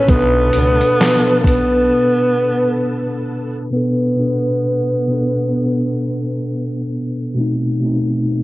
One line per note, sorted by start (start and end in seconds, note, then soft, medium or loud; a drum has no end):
0.00 0.11 C#4 medium
0.00 3.68 A4 medium
0.00 3.68 B4 medium
0.06 0.52 B1 loud
0.06 0.50 B2 medium
0.06 0.51 B3 medium
0.06 1.39 B3 loud
0.06 0.52 D4 medium
0.06 3.68 A5 medium
0.06 kick loud
0.06 closed hi-hat medium
0.12 0.53 B4 medium
0.53 0.80 C#2 medium
0.53 0.78 B2 medium
0.53 0.79 B3 medium
0.53 0.80 D4 medium
0.53 closed hi-hat medium
0.58 0.81 B4 medium
0.79 2.48 B2 medium
0.79 2.49 B3 medium
0.79 2.50 D4 medium
0.79 closed hi-hat soft
0.85 2.51 A4 medium
1.01 snare loud
1.01 clap medium
1.01 closed hi-hat medium
1.40 1.48 A#3 medium
1.44 1.88 B1 medium
1.44 3.27 B3 medium
1.44 kick medium
1.44 closed hi-hat medium
3.70 4.14 B2 medium
3.70 4.15 B3 medium
3.70 6.87 B3 loud
3.70 4.16 D4 medium
3.76 4.17 A4 medium
4.15 5.02 B2 medium
4.15 5.03 B3 medium
4.15 5.04 D4 medium
4.21 5.05 A4 medium
5.08 6.80 B2 medium
5.08 6.81 B3 medium
5.08 6.82 D4 medium
5.13 6.83 A4 medium
7.35 7.78 B2 medium
7.35 7.79 A3 medium
7.35 7.80 C4 medium
7.40 7.81 D#4 medium
7.80 8.43 B2 medium
7.80 8.43 A3 medium
7.80 8.43 C4 medium
7.86 8.43 D#4 medium